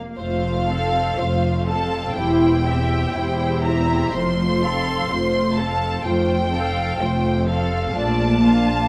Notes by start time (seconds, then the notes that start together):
Already playing: A#3
0.18 F1 F2 A3 F4 C5 F5
0.69 C4 A4 F5
1.17 F1 F2 A3 F4 C5
1.67 C4 A4 F5 A5
2.17 E1 E2 E4 G4 C5 G5
2.66 C4 E4 G4 E5
3.15 E1 E2 E4 G4 C5
3.65 C4 E4 G4 E5 A#5
4.12 F1 F2 A3 F4 C5 C6
4.62 C4 A4 F5
5.09 F1 F2 A3 F4 C5
5.57 C4 A4 F5 A5
6.05 F1 F2 A3 F4 C5 G5
6.54 C4 A4 F5
6.99 F1 F2 A3 F4 C5
7.49 C4 A4 F5
7.94 A#1 A#2 A3 D4 F4 D5 A5
8.44 A#3 D4 F4 F5